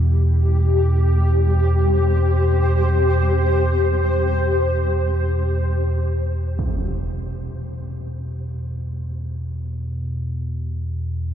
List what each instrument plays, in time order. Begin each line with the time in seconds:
Already playing: synth drone E2 B2, ambient pad E4 G4
0.61 ambient pad C5
6.59 synth drone E2 B2, impact